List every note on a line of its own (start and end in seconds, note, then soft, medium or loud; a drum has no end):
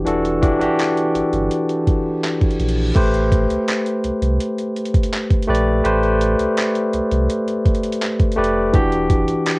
0.05 0.56 E1 loud
0.05 0.40 E3 medium
0.05 0.40 D4 medium
0.05 0.41 F#4 medium
0.05 0.41 A4 medium
0.05 closed hi-hat medium
0.25 closed hi-hat soft
0.41 0.58 E3 medium
0.41 0.59 D4 medium
0.41 0.60 F#4 medium
0.41 0.60 G4 medium
0.41 kick medium
0.41 closed hi-hat medium
0.60 0.68 G1 soft
0.60 1.97 E3 medium
0.60 1.97 D4 medium
0.60 1.98 F#4 medium
0.60 1.98 G4 medium
0.60 closed hi-hat medium
0.79 clap loud
0.79 closed hi-hat medium
0.97 closed hi-hat soft
1.15 1.22 G1 soft
1.15 closed hi-hat medium
1.33 1.49 G1 medium
1.33 closed hi-hat soft
1.51 closed hi-hat medium
1.51 reverse cymbal medium
1.69 closed hi-hat soft
1.87 kick medium
1.87 closed hi-hat medium
2.23 clap loud
2.23 closed hi-hat medium
2.41 kick medium
2.41 closed hi-hat soft
2.50 closed hi-hat soft
2.59 2.92 A#1 medium
2.59 closed hi-hat medium
2.69 closed hi-hat medium
2.95 3.46 A1 loud
2.95 4.32 A3 medium
2.95 4.32 G4 medium
2.95 4.32 B4 medium
2.95 4.33 C5 medium
2.95 kick loud
2.95 closed hi-hat medium
2.95 crash medium
3.14 closed hi-hat soft
3.32 kick medium
3.32 closed hi-hat medium
3.50 3.57 C2 soft
3.50 closed hi-hat medium
3.68 clap loud
3.68 closed hi-hat medium
3.86 closed hi-hat soft
4.04 4.11 C2 soft
4.04 closed hi-hat medium
4.22 4.38 C2 medium
4.22 closed hi-hat medium
4.40 closed hi-hat medium
4.58 closed hi-hat soft
4.76 closed hi-hat soft
4.86 closed hi-hat soft
4.94 kick medium
4.94 closed hi-hat medium
5.03 closed hi-hat medium
5.13 clap loud
5.13 closed hi-hat medium
5.31 kick medium
5.31 closed hi-hat soft
5.43 closed hi-hat medium
5.48 5.81 A#1 loud
5.48 5.82 A3 medium
5.48 5.83 G4 medium
5.48 5.83 B4 medium
5.48 5.83 D5 loud
5.55 closed hi-hat medium
5.84 6.35 A1 loud
5.84 7.21 A3 medium
5.84 7.21 G4 medium
5.84 7.22 B4 medium
5.84 7.22 C5 medium
5.84 closed hi-hat medium
6.03 closed hi-hat soft
6.21 closed hi-hat medium
6.39 6.46 C2 soft
6.39 closed hi-hat medium
6.57 clap loud
6.57 closed hi-hat medium
6.75 closed hi-hat soft
6.93 7.00 C2 soft
6.93 closed hi-hat medium
7.11 7.28 C2 medium
7.11 closed hi-hat soft
7.30 closed hi-hat medium
7.48 closed hi-hat soft
7.65 kick medium
7.65 closed hi-hat soft
7.75 closed hi-hat soft
7.83 closed hi-hat medium
7.92 closed hi-hat medium
8.01 clap loud
8.01 closed hi-hat medium
8.20 kick medium
8.20 closed hi-hat soft
8.32 closed hi-hat medium
8.36 8.71 F1 loud
8.36 8.71 A3 medium
8.36 8.72 G4 medium
8.36 8.72 B4 medium
8.36 8.72 D5 medium
8.44 closed hi-hat medium
8.73 9.24 E1 loud
8.73 9.59 E3 medium
8.73 9.59 D4 medium
8.73 9.59 F#4 medium
8.73 9.59 G4 medium
8.73 kick loud
8.73 closed hi-hat medium
8.92 closed hi-hat soft
9.10 kick medium
9.10 closed hi-hat medium
9.28 9.35 G1 soft
9.28 closed hi-hat medium
9.46 clap loud
9.46 closed hi-hat medium